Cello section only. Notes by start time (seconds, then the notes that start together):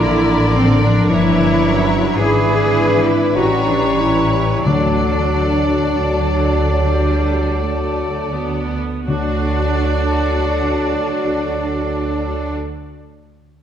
0.02 E4
0.56 C4
0.83 D4
1.10 E4
2.19 G#4
3.06 E4
3.37 F#4
3.67 D4
4.00 E4
4.66 D4
9.08 D4